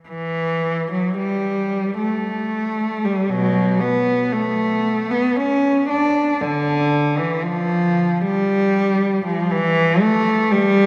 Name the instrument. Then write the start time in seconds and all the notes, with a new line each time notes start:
cello
0.08 E3
0.93 F#3
1.19 G3
1.98 A3
3.05 G3
3.30 B2 F#3
3.81 B3
4.33 A3
5.11 B3
5.36 C#4
5.90 D4
6.41 D3
7.18 E3
7.44 F3
8.22 G3
9.26 F3
9.51 E3
10.01 A3
10.52 G3